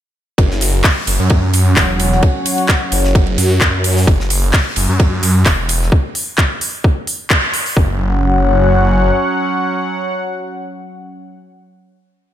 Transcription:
0.38 detuned saw bass F#1, analog synth pad F#3 C#4 C#5 F#5, kick, ride
0.51 snare
0.61 open hi-hat, ride
0.84 kick, snare, clap, open hi-hat
1.07 detuned saw bass F#1, open hi-hat, ride
1.20 detuned saw bass F#2
1.30 kick, ride
1.53 detuned saw bass F#2, open hi-hat, ride
1.76 detuned saw bass E1, kick, snare, clap, open hi-hat, ride
2.00 open hi-hat, ride
2.12 snare
2.23 kick, ride
2.46 open hi-hat, ride
2.58 ride
2.69 kick, snare, clap, ride
2.92 detuned saw bass F#1, open hi-hat, ride
3.04 snare
3.15 kick, ride
3.27 ride
3.38 detuned saw bass F#2, open hi-hat, ride
3.61 detuned saw bass F#2, kick, snare, clap, ride
3.84 open hi-hat, ride
3.97 snare, open hi-hat
4.07 detuned saw bass F#1, kick, ride
4.20 snare
4.30 open hi-hat, ride
4.53 kick, snare, clap, open hi-hat
4.76 detuned saw bass F#1, open hi-hat, ride
4.89 detuned saw bass F#2
5.00 kick, ride
5.23 detuned saw bass F#2, open hi-hat, ride
5.46 detuned saw bass E1, kick, snare, clap, open hi-hat, ride
5.69 open hi-hat, ride
5.83 snare
5.92 kick
6.15 open hi-hat
6.38 kick, clap
6.61 open hi-hat
6.84 kick
7.07 open hi-hat
7.30 kick, clap
7.54 open hi-hat
7.66 open hi-hat
7.77 detuned saw bass F#1, analog synth pad F#3 C#4 C#5 F#5, kick

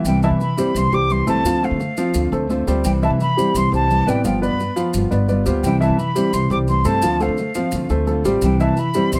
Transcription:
0.04 upright bass C2, nylon-string guitar C3 E3 G3 C4, flute G5, maracas
0.08 nylon-string guitar E4
0.23 grand piano E3 E4 E5, flute A5, maracas
0.30 upright bass C3
0.40 flute B5, muted nylon-string guitar stroke, maracas
0.57 nylon-string guitar E3 G3 C4 E4, grand piano G3 G4 C5, maracas
0.74 upright bass C2, nylon-string guitar E3 G3 C4 E4, flute C6, maracas
0.92 upright bass C2, grand piano G3 G4 C5, flute D6, maracas
1.10 nylon-string guitar E3 G3 C4 E4, flute C6, maracas
1.27 upright bass C#2, nylon-string guitar E3 G3 C4 E4, grand piano A3 A4 C5, flute A5, maracas
1.44 upright bass D2, nylon-string guitar D3 A3 C4 F4, grand piano F3 F4 F5, maracas
1.63 grand piano A3 A4 C5, flute F5, maracas
1.71 upright bass D3
1.80 muted nylon-string guitar stroke, maracas
1.97 grand piano F3 F4 F5, nylon-string guitar A3 C4 F4, maracas
2.13 upright bass D2, nylon-string guitar D3 A3 C4 F4, maracas
2.32 upright bass D2, grand piano A3 A4 C5, maracas
2.49 nylon-string guitar D3 A3 C4 F4, grand piano A3 A4 C5, maracas
2.67 upright bass D2, grand piano G3 G4 C5, nylon-string guitar A3 C4 F4, maracas
2.84 upright bass C2, nylon-string guitar C3 E3 G3 C4 E4, flute G5, maracas
3.02 grand piano E3 E4 E5, flute A5, maracas
3.10 upright bass C3
3.20 flute B5, muted nylon-string guitar stroke, maracas
3.37 nylon-string guitar E3 G3 C4 E4, grand piano G3 G4 C5, maracas
3.54 upright bass C2, nylon-string guitar E3 G3 C4 E4, flute C6, maracas
3.72 upright bass C2, grand piano G3 G4 C5, flute A5, maracas
3.90 nylon-string guitar E3 G3 C4 E4, maracas
4.07 upright bass A1, nylon-string guitar E3 G3 C4 E4, grand piano B3 B4 D5, flute G5, maracas
4.24 upright bass G1, grand piano F3 F4 F5, nylon-string guitar G3 B3 F4, flute G5, maracas
4.42 grand piano B3 B4 D5, flute B5, maracas
4.51 upright bass G2
4.60 muted nylon-string guitar stroke, maracas
4.76 grand piano F3 F4 F5, nylon-string guitar B3 F4, maracas
4.94 upright bass G1, nylon-string guitar G3 B3, maracas
4.98 nylon-string guitar F4
5.11 upright bass G1, grand piano B3 B4 D5, maracas
5.28 nylon-string guitar G3 B3 F4, grand piano B3 B4 D5, maracas
5.46 upright bass D2, grand piano G3 G4 C5, nylon-string guitar B3 F4, maracas
5.63 upright bass C2, nylon-string guitar C3 E3 G3 C4 E4, flute G5, maracas
5.80 grand piano E3 E4 E5, flute A5, maracas
5.89 upright bass C3
5.98 flute B5, muted nylon-string guitar stroke, maracas
6.15 nylon-string guitar E3 G3 C4 E4, grand piano G3 G4 C5, maracas
6.33 upright bass C2, nylon-string guitar E3 G3 E4, flute C6, maracas
6.50 upright bass C2, grand piano G3 G4 C5, flute D6, maracas
6.68 nylon-string guitar E3 G3 C4 E4, flute C6, maracas
6.84 upright bass G2, nylon-string guitar E3 G3 C4 E4, grand piano A3 A4 C5, flute A5, maracas
7.02 upright bass D2, nylon-string guitar D3 A3 C4 F4, grand piano F3 F4 F5, maracas
7.20 grand piano A3 A4 C5, flute F5, maracas
7.28 upright bass D3
7.37 muted nylon-string guitar stroke, maracas
7.55 grand piano F3 F4 F5, nylon-string guitar A3 C4 F4, maracas
7.72 upright bass D2, nylon-string guitar D3 A3 C4 F4, maracas
7.89 upright bass D2, grand piano A3 A4 C5, maracas
8.07 nylon-string guitar D3 A3 C4 F4, grand piano A3 A4 C5, maracas
8.24 upright bass A1, grand piano G3 G4 C5, nylon-string guitar A3 C4 F4, maracas
8.42 upright bass C2, nylon-string guitar C3 E3 G3 C4 E4, flute G5, maracas
8.60 grand piano E3 E4 E5, flute A5, maracas
8.69 upright bass C3
8.77 flute B5, muted nylon-string guitar stroke, maracas
8.94 nylon-string guitar E3 G3 C4 E4, grand piano G3 G4 C5, maracas
9.12 upright bass C2, nylon-string guitar E3 G3 C4 E4, flute C6, maracas

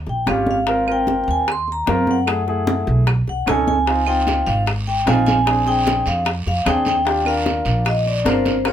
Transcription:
0.07 upright bass A#1, vibraphone G5, high bongo, high conga
0.27 upright bass G#1, grand piano C#4 F4 G4, vibraphone F5, high bongo, low bongo, high conga, claves
0.46 high conga
0.51 vibraphone F5
0.67 grand piano C4 F4 A#4, high bongo, high conga
0.86 grand piano C4 F4 A#4, high conga, claves
0.92 vibraphone G5
1.07 high bongo, high conga
1.24 upright bass D#2, vibraphone G5, high conga
1.31 vibraphone G#5
1.47 high bongo, high conga, claves
1.52 vibraphone C6
1.68 high conga
1.72 vibraphone A#5
1.86 upright bass F#2, grand piano C4 F4 A#4, high bongo, low bongo, high conga
2.07 vibraphone F#5, high conga
2.26 grand piano A3 E4 G#4, high bongo, high conga, claves
2.47 grand piano A3 E4 G#4, high bongo, high conga
2.67 high bongo, high conga
2.87 upright bass B1, high bongo, high conga
3.07 high bongo, high conga, claves
3.28 upright bass B1, vibraphone F#5, high bongo, high conga
3.46 upright bass C#2, grand piano C#4 D#4 A4, vibraphone G#5, high bongo, low bongo, high conga, claves
3.67 vibraphone G#5, high conga
3.86 grand piano C4 D#4 F4, high bongo, high conga, long guiro
4.06 grand piano C4 D#4 F4, vibraphone G5, high conga, claves
4.27 high bongo, high conga, short guiro
4.46 upright bass G#1, vibraphone F5, high conga, short guiro
4.66 high bongo, high conga, long guiro, claves
4.87 vibraphone G5, high conga
5.05 upright bass A#1, grand piano C4 D#4 F4, vibraphone G#5, high bongo, low bongo, high conga, short guiro
5.26 vibraphone G#5, high conga, short guiro
5.45 grand piano C4 D4 G#4, high bongo, high conga, long guiro, claves
5.65 grand piano C4 D4 G#4, vibraphone G5, high bongo, high conga
5.86 high bongo, high conga, short guiro
6.06 upright bass F2, vibraphone F5, high bongo, high conga, short guiro
6.25 high bongo, high conga, long guiro, claves
6.46 upright bass F2, vibraphone F5, high bongo, high conga
6.65 upright bass D#2, grand piano C4 D4 G#4, vibraphone G5, high bongo, low bongo, high conga, short guiro, claves
6.85 vibraphone G5, high conga, short guiro
7.05 grand piano D4 F4 G4, high bongo, high conga, long guiro
7.24 grand piano D4 F4 A#4, vibraphone F5, high conga, claves
7.45 high bongo, high conga, short guiro
7.65 upright bass A#1, high conga, short guiro
7.85 vibraphone D#5, high bongo, high conga, long guiro, claves
8.06 vibraphone D5, high conga
8.24 upright bass G1, grand piano D4 F4 A#4, vibraphone C5, high bongo, low bongo, high conga, short guiro
8.46 high conga, short guiro
8.64 grand piano C#4 F4 A#4, vibraphone C#5, high bongo, high conga, long guiro, claves

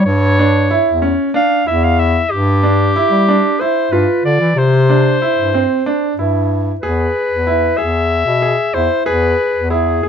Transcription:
0.06 bass clarinet G2, clarinet C#5
0.39 grand piano D4
0.71 grand piano E4
0.87 bass clarinet E2
1.02 grand piano C#4
1.34 grand piano D4, clarinet F5
1.66 bass clarinet E2, grand piano E4, clarinet E5
1.84 clarinet F5
1.99 clarinet E5
2.31 bass clarinet G2, clarinet G4
2.63 grand piano D4
2.96 grand piano E4
3.11 bass clarinet G3
3.29 grand piano D4
3.61 grand piano E4, clarinet C5
3.92 bass clarinet G2, grand piano F4, clarinet B4
4.24 bass clarinet D3, clarinet D5
4.40 bass clarinet E3
4.56 bass clarinet C3, clarinet C5
4.90 grand piano D4
5.22 grand piano E4
5.37 bass clarinet G2
5.54 grand piano C4
5.86 grand piano D4
6.17 bass clarinet G2, grand piano E4
6.81 bass clarinet E2, grand piano G#4, clarinet B4
7.29 bass clarinet E2
7.47 grand piano E4
7.77 bass clarinet E2, grand piano G#4, clarinet E5
8.26 bass clarinet B2
8.42 grand piano G#4
8.74 bass clarinet E2, grand piano E4, clarinet C5
9.06 bass clarinet E2, grand piano G#4, clarinet B4
9.55 bass clarinet E2
9.70 grand piano E4, clarinet G#4
10.03 bass clarinet E2, grand piano G#4

